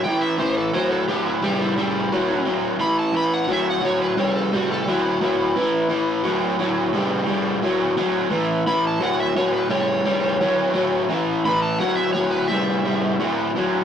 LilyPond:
<<
  \new Staff \with { instrumentName = "Electric slide guitar" } { \time 4/4 \key a \mixolydian \tempo 4 = 87 g''16 e''16 c''16 a'16 c''16 a'16 g'16 e'16 g'16 e'16 e'4 r8 | b''16 a''16 b''16 fis''16 e''16 fis''16 cis''16 b'16 cis''16 a'16 fis'16 a'16 e'8 e'8~ | e'2~ e'8 r4. | r8 b''16 a''16 fis''16 e''16 cis''16 b'16 cis''2 |
r8 b''16 a''16 fis''16 e''16 cis''16 b'16 e''2 | }
  \new Staff \with { instrumentName = "Overdriven electric guitar" } { \clef bass \time 4/4 \key a \mixolydian <a, e>8 <a, e>8 <a, fis>8 <a, fis>8 <a, g>8 <a, g>8 <a, fis>8 <a, fis>8 | <a, e>8 <a, e>8 <a, fis>8 <a, fis>8 <a, g>8 <a, g>8 <a, fis>8 <a, fis>8 | <a, e>8 <a, e>8 <a, fis>8 <a, fis>8 <a, g>8 <a, g>8 <a, fis>8 <a, fis>8 | <a, e>8 <a, e>8 <a, fis>8 <a, fis>8 <a, g>8 <a, g>8 <a, fis>8 <a, fis>8 |
<a, e>8 <a, e>8 <a, fis>8 <a, fis>8 <a, g>8 <a, g>8 <a, fis>8 <a, fis>8 | }
>>